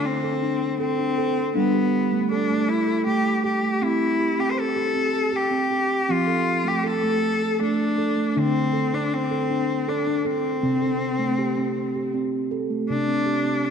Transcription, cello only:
0.05 0.80 C4 medium
0.80 1.52 C4 medium
1.57 2.28 B3 medium
2.31 2.70 D4 medium
2.69 3.06 E4 medium
3.07 3.42 G4 medium
3.45 3.85 G4 medium
3.83 4.41 E4 medium
4.40 4.52 G4 medium
4.51 4.61 C5 medium
4.59 5.37 A4 medium
5.36 6.13 G4 medium
6.12 6.69 F4 medium
6.68 6.89 G4 medium
6.87 7.62 A4 medium
7.62 8.31 D4 medium
8.31 8.40 D4 medium
8.38 8.96 C4 medium
8.94 9.15 D4 medium
9.13 9.90 C4 medium
9.89 10.28 D4 medium
10.26 12.15 C4 medium
12.90 13.66 D4 medium
13.64 13.70 C4 medium

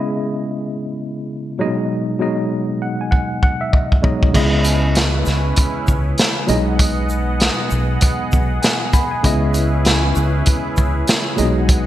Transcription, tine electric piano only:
0.00 1.61 C#3 medium
0.00 1.60 G#3 medium
0.00 1.60 B3 medium
0.00 1.61 E4 medium
0.00 1.61 D#5 loud
1.58 1.66 A#2 medium
1.58 2.11 F#3 medium
1.58 2.11 G#3 medium
1.58 2.11 D#4 medium
1.58 2.12 D#5 loud
1.65 2.13 B2 medium
2.19 3.15 B2 medium
2.19 3.16 F#3 medium
2.19 3.16 G#3 medium
2.19 3.16 D#4 medium
2.19 3.17 D#5 medium
2.82 2.99 F#5 medium
3.01 3.12 G#5 medium
3.11 3.40 F#5 medium
3.43 3.60 F#5 medium
3.61 3.72 E5 medium
3.73 4.01 D#5 medium
4.02 4.28 B2 medium
4.02 4.28 F#3 medium
4.02 4.29 G#3 medium
4.02 4.29 D#4 medium
4.02 4.32 C#5 medium
4.02 4.30 D#5 medium
4.33 5.29 C#3 medium
4.33 5.30 G#3 medium
4.33 5.30 B3 medium
4.33 5.30 E4 medium
4.33 5.31 D#5 loud
6.47 6.56 A#2 medium
6.47 7.47 F#3 medium
6.47 7.48 G#3 medium
6.47 7.48 D#4 medium
6.47 7.48 D#5 loud
6.53 7.50 B2 medium
8.62 8.92 G#5 medium
8.93 9.10 G#5 medium
8.93 9.11 B5 medium
9.11 9.41 G#5 medium
9.23 10.19 C#3 medium
9.23 10.20 G#3 medium
9.23 10.20 B3 medium
9.23 10.20 E4 medium
9.23 10.21 D#5 loud
11.36 11.45 A#2 medium
11.36 11.87 F#3 medium
11.36 11.87 G#3 medium
11.36 11.87 D#4 medium
11.36 11.87 D#5 loud
11.42 11.87 B2 medium

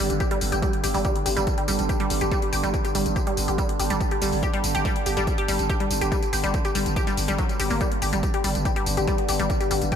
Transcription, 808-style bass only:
0.10 0.20 G1 medium
0.41 0.52 G1 loud
0.52 0.62 G1 medium
0.84 0.94 G1 loud
0.95 1.05 G1 medium
1.26 1.36 G1 loud
1.37 1.47 G1 medium
1.68 1.78 G1 loud
1.79 1.89 G1 medium
2.11 2.21 G1 loud
2.21 2.31 G1 medium
2.53 2.63 G1 loud
2.64 2.74 G1 medium
2.95 3.05 G1 loud
3.06 3.16 G1 medium
3.37 3.47 G1 loud
3.48 3.58 G1 medium
3.79 3.90 G1 loud
3.90 4.00 G1 medium
4.22 4.32 G1 loud
4.32 4.43 G1 medium
4.64 4.74 G1 medium
4.75 4.85 G1 medium
5.06 5.16 G1 loud
5.17 5.27 G1 medium
5.48 5.58 G1 loud
5.59 5.69 G1 medium
5.90 6.01 G1 loud
6.01 6.11 G1 medium
6.33 6.43 G1 loud
6.44 6.54 G1 medium
6.75 6.85 G1 loud
6.86 6.96 G1 medium
7.17 7.28 G1 loud
7.28 7.38 G1 medium
7.60 7.70 G1 loud
7.71 7.81 G1 medium
8.02 8.12 G1 loud
8.13 8.23 G1 medium
8.44 8.55 G1 loud
8.55 8.65 G1 medium
8.86 8.97 G1 loud
8.97 9.07 G1 medium
9.29 9.39 G1 loud
9.39 9.50 G1 medium
9.71 9.81 G1 medium
9.82 9.92 G1 medium

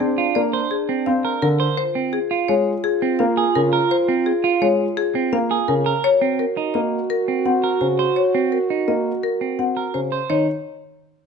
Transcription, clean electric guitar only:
0.18 0.41 F4 medium
0.53 0.76 C5 medium
0.89 1.12 C4 medium
1.25 1.48 A#4 medium
1.60 1.83 C5 medium
1.95 2.18 C4 medium
2.31 2.54 F4 medium
3.02 3.25 C4 medium
3.37 3.60 G#4 medium
3.73 3.96 A#4 medium
4.08 4.32 C4 medium
4.44 4.67 F4 medium
5.15 5.38 C4 medium
5.51 5.74 G#4 medium
5.86 6.09 A#4 medium
6.22 6.45 C4 medium
6.57 6.80 D#4 medium
7.28 7.51 C4 medium
7.64 7.87 A#4 medium
7.99 8.22 C5 medium
8.35 8.58 C4 medium
8.70 8.93 D#4 medium
9.41 9.64 C4 soft
9.77 10.00 A#4 medium
10.12 10.35 C5 medium
10.30 10.46 D#4 medium

